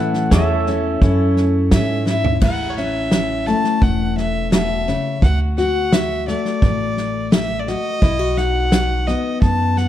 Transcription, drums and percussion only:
0.14 snare soft
0.31 kick medium
0.31 snare loud
0.31 hi-hat pedal medium
0.67 snare soft
1.02 kick loud
1.02 snare soft
1.36 snare soft
1.71 kick medium
1.71 snare loud
1.71 hi-hat pedal medium
2.06 snare medium
2.24 floor tom medium
2.41 kick loud
2.41 snare soft
2.41 crash medium
2.77 snare soft
3.12 snare medium
3.12 hi-hat pedal medium
3.47 snare soft
3.64 snare soft
3.81 kick loud
3.81 snare soft
4.17 snare soft
4.52 snare loud
4.52 hi-hat pedal medium
4.88 snare soft
5.22 kick loud
5.22 snare soft
5.58 snare soft
5.93 snare loud
5.93 hi-hat pedal medium
6.28 snare soft
6.45 snare soft
6.62 kick loud
6.62 snare soft
6.97 snare soft
7.32 snare loud
7.32 hi-hat pedal medium
7.67 snare soft
8.02 kick loud
8.02 snare soft
8.37 snare soft
8.72 snare medium
8.72 hi-hat pedal medium
9.07 snare soft
9.42 kick loud
9.42 snare soft
9.77 snare soft

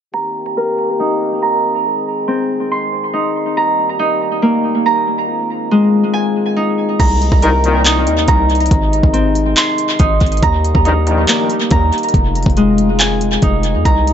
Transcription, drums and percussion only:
7.00 kick loud
7.00 closed hi-hat medium
7.00 crash loud
7.22 closed hi-hat medium
7.32 kick loud
7.42 closed hi-hat medium
7.64 closed hi-hat medium
7.85 clap loud
7.85 closed hi-hat medium
8.07 closed hi-hat medium
8.28 kick loud
8.28 closed hi-hat medium
8.50 closed hi-hat soft
8.55 closed hi-hat medium
8.60 closed hi-hat medium
8.66 closed hi-hat medium
8.71 kick loud
8.71 closed hi-hat medium
8.93 closed hi-hat medium
9.03 kick loud
9.14 closed hi-hat medium
9.35 closed hi-hat medium
9.57 clap loud
9.57 closed hi-hat medium
9.78 closed hi-hat medium
9.99 kick loud
9.99 closed hi-hat medium
10.20 kick loud
10.20 closed hi-hat soft
10.20 open hi-hat medium
10.26 closed hi-hat medium
10.32 closed hi-hat medium
10.37 closed hi-hat medium
10.43 kick loud
10.43 closed hi-hat medium
10.65 closed hi-hat medium
10.75 kick loud
10.85 closed hi-hat medium
11.07 closed hi-hat medium
11.28 clap loud
11.28 closed hi-hat medium
11.50 closed hi-hat medium
11.71 kick loud
11.71 closed hi-hat medium
11.93 closed hi-hat soft
11.98 closed hi-hat medium
12.03 closed hi-hat medium
12.09 closed hi-hat medium
12.14 kick loud
12.14 closed hi-hat medium
12.35 closed hi-hat medium
12.43 kick loud
12.43 closed hi-hat medium
12.50 closed hi-hat soft
12.57 closed hi-hat medium
12.78 closed hi-hat medium
13.00 clap loud
13.00 closed hi-hat medium
13.21 closed hi-hat medium
13.42 kick loud
13.42 closed hi-hat medium
13.63 closed hi-hat medium
13.85 kick loud
13.85 closed hi-hat medium
14.07 closed hi-hat medium

